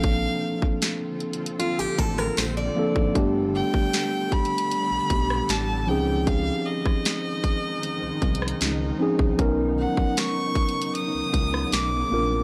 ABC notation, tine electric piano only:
X:1
M:4/4
L:1/8
Q:1/4=77
K:C#dor
V:1 name="Tine electric piano"
[^E,A,^B,=D=A]2 z4 z [E,^A,B,D=A] | [=G,=A,B,=D=G]3 z4 [^E,^B,C^D^G]- | [^E,^B,CDG]2 z4 z [E,B,CDG] | [F,B,CDA]3 z4 [A,^B,=D^EA] |]